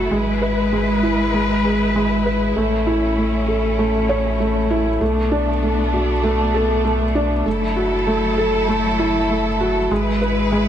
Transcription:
Already playing: A3 E4 F#4 A4
0.11 G#1 G#3 B4
0.42 B4
0.72 G#3
1.03 E4
1.34 G#3
1.64 G#4
1.95 G#3
2.26 B4
2.56 A1 A3 C#4
2.87 E4
3.17 A3
3.48 A4
3.79 A3
4.09 C#5
4.40 A3
4.70 E4
5.01 B1 A3 B3 D4
5.32 D4
5.63 A3
5.93 F#4
6.23 A3
6.54 A4
6.85 A3
7.15 D4
7.46 F#1 F#3 A3 E4 A4
7.76 F#4
8.07 A3
8.38 A4
8.68 A3
8.99 E4
9.30 A3
9.60 F#4
9.91 G#1 G#3 E4 B4
10.22 B4
10.52 G#3

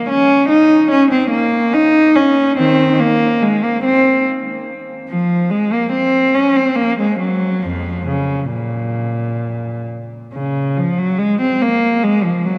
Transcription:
0.09 C#4
0.49 D#4
0.91 C#4
1.11 C4
1.30 A#3
1.74 D#4
2.15 C#4
2.58 D#3 C4
3.00 A#3
3.42 G#3
3.63 A#3
3.84 C4
5.09 F3
5.51 G#3
5.73 A#3
5.92 C4
6.34 C#4
6.56 C4
6.75 A#3
6.99 G#3
7.19 F#3
7.63 F2 F3
8.07 C#3
8.53 A#2
10.33 C#3
10.77 F3
10.98 F#3
11.18 G#3
11.41 C4
11.62 A#3
12.03 G#3
12.23 F3
12.45 F#3

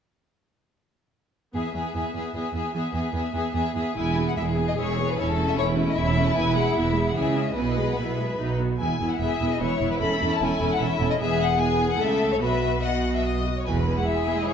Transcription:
1.54 E2 B3 G#4 E5
1.74 E2 B3 G#4 E5
1.94 E2 B3 G#4 E5
2.14 E2 B3 G#4 E5
2.34 E2 B3 G#4 E5
2.54 E2 B3 G#4 E5
2.73 E2 B3 G#4 E5
2.93 E2 B3 G#4 E5
3.13 E2 B3 G#4 E5
3.33 E2 B3 G#4 E5
3.53 E2 B3 G#4 E5
3.74 E2 B3 G#4 E5
3.95 E1 E2 G#3 E4 G#5
4.16 B3 G#4
4.27 F#5
4.36 E1 E2 G#3 E4 G#4 E5
4.57 B3 G#4
4.68 D#5
4.77 E1 E2 G#3 E4 C#5
4.97 B3 G#4
5.09 B4
5.17 E1 E2 C#4 E4 A4 C#5
5.38 A3 C#4
5.48 E5
5.57 E1 E2 C#4 E4 C#5
5.77 A3 C#4
5.88 D#5
5.97 E1 E2 C#4 E4 E5
6.17 A3 C#4
6.28 A5
6.36 E1 E2 B3 E4 G#5
6.55 G#3 G#4 F#5
6.75 E1 E2 B3 E4 E5
6.95 G#3 G#4
7.07 F#5
7.14 C#2 C#3 E3 E4 G#4 E5
7.35 G#3 C#4
7.47 D#5
7.56 B1 B2 B3 E4 B4 D#5
7.76 G#3 G#4
7.91 F#5
7.97 B1 B2 B3 E4 E5
8.18 G#3 G#4
8.38 B1 B2 F#3 D#4
8.59 B3 F#4
8.80 E1 E2 B3 E4 G#5
9.00 E1 E2 B3 E4
9.11 F#5
9.20 E1 E2 B3 E4 G#4 E5
9.40 E1 E2 B3 E4
9.51 D#5
9.60 E1 E2 B3 E4 C#5
9.80 E1 E2 B3 E4
9.91 B4
10.00 E1 E2 C#4 A4 B5
10.20 E1 E2 C#4 A4
10.31 A5
10.40 E1 E2 C#4 A4 G#5
10.60 E1 E2 C#4 A4
10.71 F#5
10.80 E1 E2 C#4 A4 E5
11.00 E1 E2 C#4 A4
11.10 D#5
11.19 E1 E2 B3 G#4 E5
11.39 F#5
11.58 B3 G#4 G#5
11.90 F#5
11.99 C#2 C#3 A3 A4 E5
12.31 C#5
12.40 B1 B2 B3 F#4 B4 E5
12.82 B3 F#4 D#5 F#5
13.15 E5
13.24 D#5
13.57 C#5
13.66 E1 E2 E3 E4 B4 G#5
13.76 G#3
13.87 B3
13.96 G#3 F#5
14.06 E3 G#4 E5
14.16 G#3
14.26 B3
14.36 G#3 D#5
14.46 E3 C#5

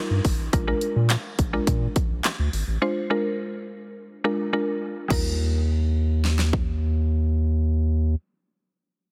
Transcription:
Already playing: G3 D#4 F4 A#4
0.10 G2
0.25 G#1, kick, open hi-hat
0.39 A1
0.53 A#1 G#3 D4 F4 A#4, kick, closed hi-hat
0.67 G#3 D4 F4 A#4
0.81 closed hi-hat
0.96 A#2
1.10 snare, clap, closed hi-hat
1.39 A#1, kick, closed hi-hat
1.53 G#3 D4 F4 A#4
1.67 A#2, kick, closed hi-hat
1.96 kick, closed hi-hat
2.10 A#1
2.24 snare, clap, closed hi-hat
2.39 D2
2.53 G#1, open hi-hat
2.68 A1
2.82 G#3 D4 F4 C5
3.10 G#3 D4 F4 A#4
4.24 G#3 D4 F4 A#4
4.53 G#3 D4 F4 A#4
5.08 D#2 G3 D#4 F4 A#4, kick, crash
6.25 snare
6.39 snare
6.53 kick

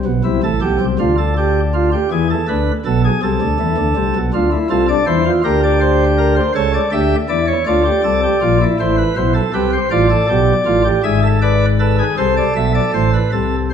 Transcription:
0.05 B1 B2
0.24 C2 C3 E4
0.43 A1 A2 A4
0.61 B1 B2 G4
0.80 C2 C3
0.99 D2 D3 F4
1.18 A4
1.37 G4
1.74 F4
1.92 G4
2.11 E2 E3 G#4
2.30 A4
2.48 D2 D3 B4
2.85 B1 B2 A4
3.04 G#4
3.23 C2 C3 A4
3.41 D2 D3
3.60 E2 E3
3.78 D2 D3
3.97 C2 C3
4.15 B1 B2
4.34 D2 D3 F4
4.52 E4
4.70 C2 C3 F4 A4
4.89 D4 D5
5.07 E2 E3 E4 C5
5.25 F4
5.44 D2 D3 G4 A#4
5.63 D5
5.81 C5
6.18 A#4
6.36 C5
6.55 C#2 C#3 A4 C#5
6.74 D5
6.92 D2 D3 G4 E5
7.29 E2 E3 E4 D5
7.47 C#5
7.67 D2 D3 F4 D5
7.85 G4
8.04 C2 C3 A4
8.23 G4
8.42 A#1 A#2 F4
8.61 E4
8.80 A1 A2 E4 C5
8.98 B4
9.16 B1 B2 E4 C5
9.34 A4
9.54 C2 C3 G4 B4
9.73 C5
9.91 A1 A2 F4 D5
10.10 A4
10.29 B1 B2 G4
10.66 A1 A2 F4
10.85 G4
11.03 G#1 G#2 G#4 E5
11.23 A4
11.42 B4 D5
11.79 A4 B4
11.99 G#4
12.18 C2 C3 A4 C5
12.37 D5
12.56 B1 B2 E5
12.75 D5
12.94 A1 A2 C5
13.13 B4
13.32 C2 C3 A4
13.70 C5

